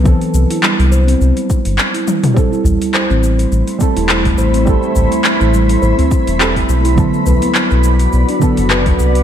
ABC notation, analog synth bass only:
X:1
M:4/4
L:1/16
Q:"Swing 16ths" 1/4=104
K:Ador
V:1 name="Analog synth bass" clef=bass
C,, z C,, z2 C,,3 C,, z2 G,,, z4 | z2 A,,, z2 A,,,3 A,,, z2 E,,,3 A,,,2- | A,,, z A,,, z2 A,,,3 A,,, z2 E,,,3 B,,,2- | B,,, z B,,, z2 B,,,3 B,,, z2 F,,,3 C,,2 |]